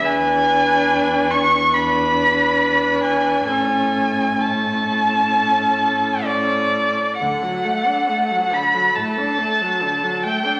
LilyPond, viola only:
\new Staff \with { instrumentName = "Viola" } { \time 4/4 \key d \major \tempo 4 = 69 d'2 d'2 | cis'4 cis'2 cis'8. r16 | d16 fis16 a16 d'16 a16 fis16 d16 fis16 a16 d'16 a16 fis16 d16 fis16 a16 d'16 | }